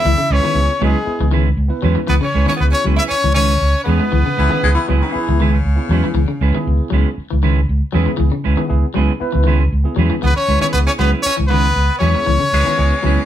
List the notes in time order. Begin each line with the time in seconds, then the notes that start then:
Already playing: B3 E4 G#4 E5
0.05 C#2 E3
0.18 C#3, muted fingered electric bass stroke
0.30 C#2 G#3 C#4 E4 B4 C#5
0.43 D#3 B3 C#4 E4 G#4 B4, muted fingered electric bass stroke
0.53 C#2 B3 E4 G#4
0.80 C#2 F#3 G#3 B3 C#4 E4 G#4 B4
0.85 G#4
1.05 B3 E4 G#4, muted fingered electric bass stroke
1.20 C#2 E3
1.31 D#3 G#3 C#4 E4 B4
1.57 C#2
1.68 B3 E4 B4
1.82 E2 F#3 G#3 C#4 E4 B4
1.95 E3, muted fingered electric bass stroke
2.07 C#2 E3 B3 B4
2.21 C#3 C#4 C#5, muted fingered electric bass stroke
2.34 C#2 G#3 C#4 E4 B4
2.46 D#3 B3 C#4 E4 G#4 C#5, muted fingered electric bass stroke
2.56 B3 B4
2.61 C#2
2.71 C#4 C#5
2.84 C#2 F#3 G#3 C#4 E4 B4
2.96 E4 B4 E5
3.00 C#4 E4
3.08 C#4 C#5, muted fingered electric bass stroke
3.24 C#2 E3
3.34 D#3 G#3 C#4 E4 B4 C#5
3.61 C#2
3.84 E2 G#3 B3 E4 B4
3.88 C#4 E4 G#4 B4
3.99 G#3, muted fingered electric bass stroke
4.12 C#2 E3
4.26 C#3, muted fingered electric bass stroke
4.37 C#2 E3 G#3 C#4 E4 B4
4.49 D#3 B3 E4 G#4 B4, muted fingered electric bass stroke
4.53 C#4
4.61 C#2 G#3 B3 E4 G#4
4.75 E3
4.87 C#2 F#3 G#3 B3 E4 G#4 B4, muted clean electric guitar stroke
5.02 E3 C#4 E4 B4
5.11 B3 E4 G#4
5.16 muted fingered electric bass stroke
5.29 C#2 E3
5.40 D#3 G#3 E4 B4
5.53 C#3
5.65 C#2
5.75 B3 E4 G#4
5.89 E2 F#3 G#3 C#4 E4 B4
6.04 E3, muted fingered electric bass stroke
6.14 C#2 E3
6.28 C#3, muted fingered electric bass stroke
6.41 C#2 G#3 C#4 E4 B4
6.54 D#3 B3 E4 G#4, muted fingered electric bass stroke
6.67 C#2
6.90 C#2 F#3 G#3 C#4 E4 B4
7.18 muted fingered electric bass stroke
7.30 C#2 E3
7.43 D#3 G#3 C#4 E4 B4
7.69 C#2
7.92 E2 F#3 G#3 B3 C#4 E4 G#4 B4
8.06 E3, muted fingered electric bass stroke
8.17 C#2 E3
8.32 C#3, muted fingered electric bass stroke
8.44 C#2 G#3 C#4 E4 B4
8.56 D#3 B3 E4 G#4, muted fingered electric bass stroke
8.68 C#2 B3 E4 G#4
8.94 C#2 F#3 G#3 B3 C#4 E4 G#4 B4
9.20 B3 E4 B4, muted fingered electric bass stroke
9.32 C#2 E3
9.44 D#3 G#3 C#4 E4
9.48 B4
9.72 C#2
9.84 B3 E4 G#4
9.96 E2 F#3 G#3 C#4 E4 B4
10.10 E3, muted fingered electric bass stroke
10.22 C#2 E3 B3 B4
10.36 C#4 C#5, muted fingered electric bass stroke
10.48 C#2 G#3 C#4 E4 B4
10.61 D#3 B3 C#4 E4 G#4 B4 C#5, muted fingered electric bass stroke
10.72 C#2 B3 B4
10.87 C#4 C#5
10.99 C#2 F#3 G#3 B3 C#4 E4 B4
11.13 C#4 E4 B4
11.22 C#4 C#5, muted fingered electric bass stroke
11.37 C#2 E3
11.47 D#3 G#3 B3 C#4 B4
11.52 E4
11.76 C#2
11.99 E2 F#3 G#3 B3 C#4 E4 C#5
12.03 G#4 B4
12.15 muted clean electric guitar stroke, muted fingered electric bass stroke
12.26 C#2 E3
12.40 C#3, muted fingered electric bass stroke
12.53 C#2 G#3 C#4 E4 B4, muted clean electric guitar stroke
12.65 D#3 B3 E4 G#4, muted fingered electric bass stroke
12.77 C#2 B3 E4 G#4
13.02 C#2 F#3 G#3 B3 C#4 E4 G#4
13.07 B4